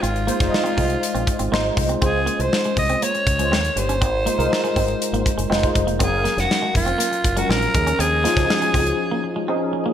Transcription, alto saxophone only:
X:1
M:4/4
L:1/16
Q:1/4=121
K:Abmix
V:1 name="Alto saxophone"
F12- F2 z2 | A3 c3 e2 d6 c2- | c12- c2 z2 | A3 G3 F4- F G B4 |
A12 z4 |]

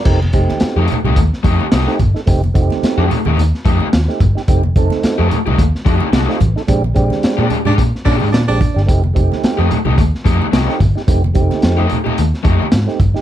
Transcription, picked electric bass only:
X:1
M:4/4
L:1/16
Q:"Swing 16ths" 1/4=109
K:Fmix
V:1 name="Picked electric bass" clef=bass
F,,,2 F,,, z2 F,, z C,, E,, z F,, z C,, z G,,, z | F,,,2 F,,, z2 F,, z E,, E,, z F,, z E,, z G,,, z | F,,,2 F,,, z2 F,, z C,, E,, z F,, z C,, z A,,, z | B,,,2 B,,, z2 B,, z _A,, B,, z B,, A,, B,, B,,, z G,,, |
F,,,2 F,,, z2 F,, z C,, E,, z F,, z C,, z G,,, z | F,,,2 F,,, z F,,2 z2 E,, z F,, z _A,, z G,,, z |]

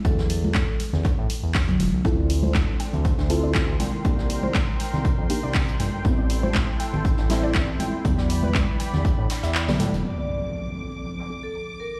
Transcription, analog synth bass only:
X:1
M:4/4
L:1/16
Q:"Swing 16ths" 1/4=120
K:Ddor
V:1 name="Analog synth bass" clef=bass
E,,4- E,, z2 E,,2 A,, z E,,3 E,,, B,,, | D,,4- D,, z2 D,,2 D,,4- D,, C,, z | C,,4- C,, z2 C,,2 F,, z C,,3 G,,, G,,, | A,,,4- A,,, z2 A,,,2 A,,,4- A,,, A,,, z |
E,,4- E,, z2 E,,2 A,, z E,,2 B,,, A,, E,,, | z16 |]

